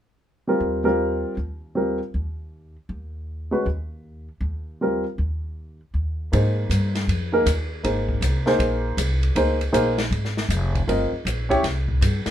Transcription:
0.47 G3 C4 F4 A#4
0.60 D#2
0.84 G3 C4 F4 A#4
1.37 D#2
1.75 G3 C4 F4 A#4
2.14 D#2
2.89 D#2
3.51 G#3 C#4 F#4 B4
3.66 D#2
4.41 D#2
4.81 G3 C4 F4 A#4
5.18 D#2
5.94 D#2
6.32 G#2 A#3 D#4 G#4 C5, ride
6.70 G2, hi-hat pedal, ride
6.95 snare, ride
7.08 F2, ride
7.32 A#3 D#4 G#4 A#4
7.46 D#2, hi-hat pedal, ride
7.83 G#1 A#3 D#4 G#4 C5, ride
8.09 kick
8.21 C2, hi-hat pedal, ride
8.46 A#3 D#4 G#4 C5, snare
8.59 A#1, ride
8.97 C2, hi-hat pedal, ride
9.23 ride
9.35 C#2 A#3 D#4 G#4 C5, ride
9.61 ride
9.73 A#1 A#3 D#4 G#4 C5, hi-hat pedal, ride
9.98 snare, ride
10.11 G#1, ride
10.25 snare
10.37 snare
10.49 F1, hi-hat pedal, ride
10.74 kick, ride
10.87 G1 C4 F4 A#4 D#5, ride
11.12 muted upright bass stroke
11.25 A#1, hi-hat pedal, ride
11.49 C#4 E4 G4 C#5, kick, ride
11.63 C2, snare, ride
11.88 kick
12.01 G2, hi-hat pedal, ride
12.26 muted upright bass stroke, snare, ride

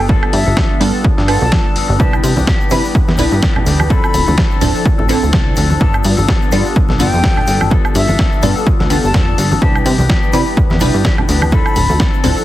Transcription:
Already playing: G1
0.00 B3 D4
0.08 F3 G3 B3 D4 F4 A4, kick
0.23 high woodblock
0.33 G2 E5, open hi-hat
0.46 G1 B3 D4 A4
0.56 F3 D4 A4, kick, snare
0.80 G2 G3 B3 D4 F4 A4, open hi-hat
0.94 B3 D4 A4
1.04 kick
1.17 G2 B3 D4 A4, snare
1.27 F3 G3 B3 D4 F4 A4, open hi-hat, high woodblock
1.42 B1 A5
1.51 F3 B3 D4 A4, kick, snare
1.65 B3 D4 A4
1.75 G1 F3 B3 D4 A4, open hi-hat
1.88 G1 B3 D4 A4
1.99 C2 E3 G3 B3 D4 E4 G4 B4 A5, kick, shaker
2.13 high woodblock, shaker
2.23 C3, open hi-hat, shaker
2.36 C2 B3 D4 G4, high conga, shaker
2.46 E3 B3 D4 G4, kick, snare, shaker
2.61 shaker
2.70 C3 G3 D4 E4 B4 B5, open hi-hat, high conga, shaker
2.84 B3 D4 G4, shaker
2.95 E2, kick, shaker
3.08 E2 B3 D4 G4, snare, high conga
3.17 C2 E3 G3 B3 D4 E4 G4 B4, open hi-hat, low conga, shaker
3.32 G2, shaker
3.42 kick, snare, high conga, shaker
3.56 low conga, high woodblock
3.65 D2 E3 B3 D4 G4, open hi-hat, shaker
3.79 B3 D4 G4, high conga, high woodblock, shaker
3.89 F3 C4 D4 E4 A4 B5, kick, shaker
4.04 high woodblock, shaker
4.14 D1, open hi-hat, shaker
4.27 D2 C4 D4 A4, high conga, shaker
4.37 F3 C4 A4, kick, snare, shaker
4.51 shaker
4.61 D1 F3 C4 D4 E4 A4, open hi-hat, low conga, shaker
4.75 C4 D4 A4, shaker
4.85 kick, shaker
4.98 A1 C4 D4 A4, high conga
5.08 F3 C4 D4 E4 A4, open hi-hat, shaker
5.23 D2, shaker
5.33 C2 C4 D4 A4, kick, snare, high conga, shaker
5.56 D2 F3 C4 D4 A4, open hi-hat, shaker
5.70 C4 D4 A4, high conga, shaker
5.80 G1 F3 G3 B3 D4 F4 A4 A5, kick, shaker
5.93 high woodblock, shaker
6.04 G2, open hi-hat, shaker
6.17 G1 B3 D4 A4, high conga, shaker
6.28 F3 B3 D4 A4, kick, snare, shaker
6.42 shaker
6.51 G2 G3 B3 D4 F4 A4, open hi-hat, high conga, shaker
6.65 B3 D4 A4, shaker
6.75 B1, kick, shaker
6.89 B1 B3 D4 A4, snare, high conga
6.99 G1 F3 G3 B3 D4 F4 A4 G5, open hi-hat, low conga, shaker
7.13 F2, shaker
7.23 B3 D4 A4, kick, snare, high conga, shaker
7.36 B3 D4 A4, low conga, high woodblock
7.46 G1 F3 B3 D4 A4, open hi-hat, shaker
7.60 B3 D4 A4, high conga, high woodblock, shaker
7.70 F3 G3 B3 D4 F4 A4, kick, shaker
7.85 high woodblock, shaker
7.95 G2 E5, open hi-hat, shaker
8.08 G1 B3 D4 A4, high conga, shaker
8.18 F3 B3 D4 A4, kick, snare, shaker
8.32 shaker
8.42 G2 G3 B3 D4 F4 A4, open hi-hat, low conga, shaker
8.56 B3 D4 A4, shaker
8.67 kick, shaker
8.79 D2 B3 D4 A4, snare, high conga
8.89 F3 G3 B3 D4 F4 A4, open hi-hat, shaker
9.04 G1 A5, shaker
9.14 F1 F3 B3 D4 A4, kick, snare, high conga, shaker
9.27 B3 D4 A4
9.37 G1 F3 B3 D4 A4, open hi-hat, shaker
9.51 B3 D4 A4, high conga, shaker
9.61 C2 E3 G3 B3 D4 E4 G4 B4 A5, kick, shaker
9.76 high woodblock, shaker
9.86 C3, open hi-hat, shaker
9.98 C2 B3 D4 G4, high conga, shaker
10.09 E3 B3 D4 G4, kick, snare, shaker
10.23 shaker
10.33 C3 G3 D4 E4 B4 B5, open hi-hat, high conga, shaker
10.46 B3 D4 G4, shaker
10.57 E2, kick, shaker
10.70 E2 B3 D4 G4, snare, high conga
10.80 C2 E3 G3 B3 D4 E4 G4 B4, open hi-hat, low conga, shaker
10.94 G2, shaker
11.04 E3 B3 D4 G4, kick, snare, high conga, shaker
11.17 B3 D4 G4, low conga, high woodblock
11.28 D2 E3 B3 D4 G4, open hi-hat, shaker
11.41 B3 D4 G4, high conga, high woodblock, shaker
11.52 F3 C4 D4 E4 A4 B5, kick, shaker
11.66 high woodblock, shaker
11.75 D1, open hi-hat, shaker
11.89 D2 C4 D4 A4, high conga, shaker
11.99 F3 C4 D4 A4, kick, snare, shaker
12.14 shaker
12.23 D1 F3 C4 D4 E4 A4, open hi-hat, low conga, shaker
12.36 C4 D4 A4, shaker

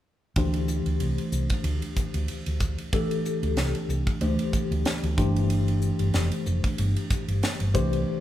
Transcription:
0.36 D2 E3 A3 D4 G4 C5, kick, ride
0.54 ride
0.68 hi-hat pedal
0.86 D2, ride
1.00 C2, ride
1.18 ride
1.32 C2, hi-hat pedal
1.50 muted fingered electric bass stroke, kick, ride
1.64 D2, ride
1.82 ride
1.96 muted fingered electric bass stroke, kick, hi-hat pedal
2.14 D2, ride
2.28 ride
2.46 D2, ride
2.60 kick, hi-hat pedal
2.78 ride
2.93 E3 A3 D4 G4 A4, kick, ride
3.11 ride
3.25 hi-hat pedal
3.43 D2, ride
3.57 C2, snare, ride
3.75 ride
3.89 C2, hi-hat pedal
4.07 muted fingered electric bass stroke, kick, ride
4.21 D2 E3 A3 D4 G4 C5, ride
4.39 ride
4.53 muted fingered electric bass stroke, kick, hi-hat pedal
4.71 D2, ride
4.85 snare, ride
5.03 D2, ride
5.17 G1 E3 A3 D4 G4 C5, kick, hi-hat pedal
5.36 ride
5.50 ride
5.68 ride
5.82 hi-hat pedal
5.99 G1, ride
6.14 F1, snare, ride
6.32 ride
6.46 F1, hi-hat pedal
6.64 kick, ride
6.78 G1, ride
6.96 ride
7.10 muted fingered electric bass stroke, kick, hi-hat pedal
7.28 G1, ride
7.43 snare, ride
7.60 G1, ride
7.74 C2 E3 A3 D4 G4 C5, kick, hi-hat pedal
7.93 ride

